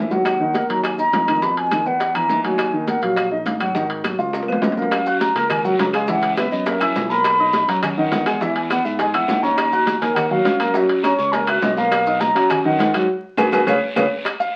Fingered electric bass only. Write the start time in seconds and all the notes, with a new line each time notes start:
Already playing: D#2
0.69 D#2
1.13 F2
1.86 E2
2.30 D#2
3.02 A#1
3.46 G#1
4.19 C#2
4.48 F2
4.62 F#2
5.35 C#2
5.79 C#2
6.52 F#2
6.96 B1
7.68 F#2
8.12 E2
8.85 G#2
9.14 E2
9.29 D#2
10.02 D#2
10.45 F#2
11.19 C#2
11.62 B1
12.35 F#2
12.79 G#2
13.38 G#1
13.53 G#1
13.67 C#2
13.97 C#2